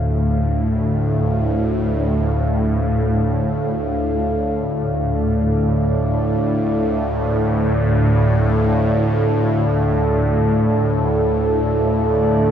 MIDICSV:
0, 0, Header, 1, 4, 480
1, 0, Start_track
1, 0, Key_signature, -1, "minor"
1, 0, Tempo, 500000
1, 12011, End_track
2, 0, Start_track
2, 0, Title_t, "Ambient pad"
2, 0, Program_c, 0, 92
2, 0, Note_on_c, 0, 62, 64
2, 0, Note_on_c, 0, 69, 72
2, 0, Note_on_c, 0, 76, 68
2, 0, Note_on_c, 0, 77, 66
2, 2965, Note_on_c, 0, 74, 74
2, 3256, Note_off_c, 0, 76, 0
2, 11570, Note_on_c, 0, 50, 69
2, 11928, Note_on_c, 0, 55, 60
2, 12011, Note_off_c, 0, 50, 0
2, 12011, Note_off_c, 0, 55, 0
2, 12011, Note_off_c, 0, 62, 0
2, 12011, Note_off_c, 0, 69, 0
2, 12011, Note_off_c, 0, 74, 0
2, 12011, Note_off_c, 0, 77, 0
2, 12011, End_track
3, 0, Start_track
3, 0, Title_t, "Synth texture"
3, 0, Program_c, 1, 99
3, 11593, Note_on_c, 1, 62, 77
3, 11603, Note_on_c, 1, 74, 71
3, 12011, Note_off_c, 1, 62, 0
3, 12011, Note_off_c, 1, 74, 0
3, 12011, End_track
4, 0, Start_track
4, 0, Title_t, "Synth drone"
4, 0, Program_c, 2, 95
4, 0, Note_on_c, 2, 38, 60
4, 0, Note_on_c, 2, 45, 62
4, 12011, Note_off_c, 2, 38, 0
4, 12011, Note_off_c, 2, 45, 0
4, 12011, End_track
0, 0, End_of_file